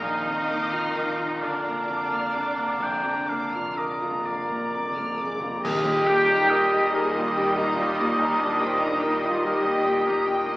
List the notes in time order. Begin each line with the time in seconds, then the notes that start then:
0.01 A#1 A#2 D#3 D#4 D#5 F5 A#5
0.10 A#2
0.17 A#2
0.25 F2 A#2 A#5
0.48 A#3 D6
0.73 F4 F6
0.77 A#2
0.85 A#2
0.95 A#4 D6
1.01 A#2
1.10 A#2
1.16 A#2 F4 A#5
1.26 A#2
1.33 A#2
1.40 A#2 D3 D4 D5 F5
1.44 A#4
1.48 A#2
1.56 A#2
1.64 A#2 A#3 A#5
1.75 A#2
1.81 A#2
1.87 F2 A#2 D6
1.97 A#2
2.06 A#2
2.10 A#2 A#3 F6
2.21 A#2
2.31 F2 A#2 D6
2.39 A#2
2.46 A#2
2.56 A#2 A#3 A#5
2.64 A#2
2.73 A#2
2.79 F1 A#1 A#2 F5 G5
2.90 A#2
2.98 A#2
3.03 F2 A#2 A#5
3.14 A#2
3.24 A#2 A#3 D6
3.30 A#2 F5
3.40 A#2
3.49 A#2 F6
3.55 A#2 F4
3.65 A#2
3.74 A#2 A#4 D#5 D6
3.83 A#2
3.91 A#2
4.00 A#2 F4 A#5
4.09 A#2
4.18 A#2
4.26 A#2 A#4 D5 F5
4.33 A#2
4.42 A#2
4.49 A#2 A#3 A#5
4.59 A#2
4.66 A#2
4.74 F2 A#2 D6
4.81 A#2
4.91 A#2
4.97 A#2 A#3 F6
5.07 A#2
5.14 A#2 G#4
5.20 F2 D6
5.24 A#2
5.32 A#2
5.40 A#2 A#3 F4 A#5
5.47 A#2
5.56 A#2
5.60 G4 D#5
5.64 D#2 D#3 G3 A#4 D#5, concert bass drum, crash
5.85 A#2 D#5
6.07 A#3 G5
6.28 D#4 A#5
6.48 A#4 D#5 G5
6.71 D#4 D#5
6.92 G#4 A#4 D#5
7.14 A#3 F4 D#5
7.32 G4
7.38 A#2 G5
7.57 A#3 D#4 A#5
7.76 A#2 F4 G5
7.99 A#3 D#5
8.18 D#2 D#4 A#4
8.40 A#2 D4 D#5
8.59 A#3 C4 G5
8.79 D#4 A#5
8.85 D4
9.00 A#4 G5
9.06 D#4
9.22 D#4 D#5
9.26 F4
9.42 G4 A#4
9.47 A#4
9.63 A#3 D#5
9.85 A#2 G5
10.05 A#3 A#5
10.26 A#2 G5
10.46 A#3 D#5